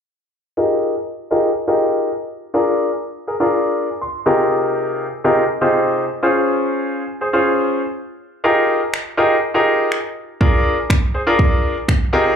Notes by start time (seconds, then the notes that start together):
0.57 D#4 F4 G4 G#4 A#4
1.31 D#4 F4 G4 G#4 A#4
1.67 D#4 F4 G4 G#4 A#4
2.54 D4 F4 G#4 A#4
3.27 G#4 A#4
3.40 D4 F4 G#4 A#4
4.02 C6
4.26 C3 D#4 F4 G4 G#4 A#4
5.24 C3 D#4 F4 G4 G#4 A#4
5.61 C3 D#4 F4 G4 G#4 C5
6.23 C#4 F4 G#4 C5
7.21 G#4 C5
7.33 C#4 F4 G#4 C5
8.44 D#4 F4 G4 G#4 A#4
8.94 finger snap
9.17 D#4 F4 G4 G#4 A#4
9.54 D#4 F4 G4 G#4 A#4
9.92 finger snap
10.41 D4 F4 G#4 A#4, kick
10.90 finger snap, kick
11.14 G#4 C5
11.27 D4 F4 G#4 A#4
11.39 kick
11.88 finger snap, kick
12.13 C3 D#4 F4 G4 G#4 A#4